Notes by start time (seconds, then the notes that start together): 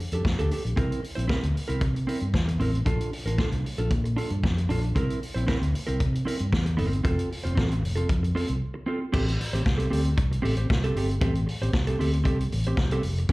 0.00 muted clean electric guitar stroke, open hi-hat
0.12 F2 D4 G4 A4, closed hi-hat
0.24 F2, muted clean electric guitar stroke, kick, snare
0.39 D2 D4 G4 A4, closed hi-hat
0.51 D4 G4 A4, open hi-hat
0.65 A#1, muted clean electric guitar stroke, closed hi-hat
0.76 C2 C4 E4 A#4, kick, closed hi-hat
0.92 closed hi-hat
1.03 muted clean electric guitar stroke, open hi-hat
1.15 A#1 C4 E4 C5, closed hi-hat
1.27 C4 E4 A#4, kick, snare
1.43 D2, muted clean electric guitar stroke, closed hi-hat
1.54 muted clean electric guitar stroke, open hi-hat
1.68 C2 C4 E4 A#4, closed hi-hat
1.81 C3, kick, closed hi-hat
1.94 muted clean electric guitar stroke, closed hi-hat
2.07 C4 E4 A#4, open hi-hat
2.20 G2, muted clean electric guitar stroke, closed hi-hat
2.34 E2, kick, snare
2.48 muted clean electric guitar stroke, closed hi-hat
2.59 A1 C4 E4 A#4, open hi-hat
2.73 muted clean electric guitar stroke, closed hi-hat
2.86 A#1 D4 F4 A4, kick, closed hi-hat
3.01 closed hi-hat
3.12 muted clean electric guitar stroke, open hi-hat
3.26 A1 D4 F4 A#4, closed hi-hat
3.38 D4 F4 A4, kick, snare
3.51 C2, muted clean electric guitar stroke, closed hi-hat
3.64 muted clean electric guitar stroke, open hi-hat
3.78 A#1 D4 F4 A4, closed hi-hat
3.90 A#2, kick, closed hi-hat
4.04 muted clean electric guitar stroke, closed hi-hat
4.16 D4 F4 A4, open hi-hat
4.30 G2, muted clean electric guitar stroke, closed hi-hat
4.44 F2, kick, snare
4.57 muted clean electric guitar stroke, closed hi-hat
4.69 A#1 D4 F4 A4, open hi-hat
4.83 muted clean electric guitar stroke, closed hi-hat
4.95 C2 C4 E4 A#4, kick, closed hi-hat
5.10 closed hi-hat
5.22 muted clean electric guitar stroke, open hi-hat
5.34 A#1 C4 E4 C5, closed hi-hat
5.47 C4 E4 A#4, kick, snare
5.60 D2, muted clean electric guitar stroke, closed hi-hat
5.73 muted clean electric guitar stroke, open hi-hat
5.87 C2 C4 E4 A#4, closed hi-hat
6.00 C3, kick, closed hi-hat
6.13 muted clean electric guitar stroke, closed hi-hat
6.25 C4 E4 A#4, open hi-hat
6.39 G2, muted clean electric guitar stroke, closed hi-hat
6.53 E2, kick, snare
6.66 muted clean electric guitar stroke, closed hi-hat
6.77 G1 C4 E4 A#4, open hi-hat
6.91 muted clean electric guitar stroke, closed hi-hat
7.03 F1 C4 F4 A4, kick, closed hi-hat
7.19 closed hi-hat
7.31 muted clean electric guitar stroke, open hi-hat
7.44 F1 C4 F4 C5, closed hi-hat
7.55 A1 C4 F4 A4, kick, snare
7.70 muted clean electric guitar stroke, closed hi-hat
7.81 F1, muted clean electric guitar stroke, open hi-hat
7.96 C4 F4 A4, closed hi-hat
8.09 F2, kick, closed hi-hat
8.23 muted clean electric guitar stroke, closed hi-hat
8.35 C4 F4 A4, open hi-hat
8.48 C2, muted clean electric guitar stroke, closed hi-hat
8.74 muted clean electric guitar stroke
8.86 C4 F4 A4
9.01 muted clean electric guitar stroke
9.12 A1 C4 G4 A4, kick, crash
9.27 muted clean electric guitar stroke, closed hi-hat
9.40 muted clean electric guitar stroke, open hi-hat
9.53 A1 C4 G4 C5, closed hi-hat
9.66 C2, kick, snare
9.77 C4 G4 A4, closed hi-hat
9.90 D2 C4 G4 A4, open hi-hat
10.03 muted clean electric guitar stroke, closed hi-hat
10.17 C2, muted clean electric guitar stroke, kick, closed hi-hat
10.32 muted clean electric guitar stroke, closed hi-hat
10.42 A1 C4 G4 A4, open hi-hat
10.57 C4 G4 C5, closed hi-hat
10.70 C2, muted clean electric guitar stroke, kick, snare
10.84 C4 G4 A4, closed hi-hat
10.96 G1 C4 G4 A4, open hi-hat
11.10 muted clean electric guitar stroke, closed hi-hat
11.21 A1 C4 G4 A4, kick, closed hi-hat
11.35 muted clean electric guitar stroke, closed hi-hat
11.46 muted clean electric guitar stroke, open hi-hat
11.61 A1 C4 G4 C5, closed hi-hat
11.73 C2, muted clean electric guitar stroke, kick, snare
11.87 C4 G4 A4, closed hi-hat
11.99 D2 C4 G4 A4, open hi-hat
12.13 muted clean electric guitar stroke, closed hi-hat
12.24 C2 C4 G4 A4, kick, closed hi-hat
12.40 muted clean electric guitar stroke, closed hi-hat
12.52 A1, muted clean electric guitar stroke, open hi-hat
12.64 C4 G4 C5, closed hi-hat
12.77 C2, kick, snare
12.91 C4 G4 A4, closed hi-hat
13.03 F1, muted clean electric guitar stroke, open hi-hat
13.18 muted clean electric guitar stroke, closed hi-hat
13.29 G1, kick, closed hi-hat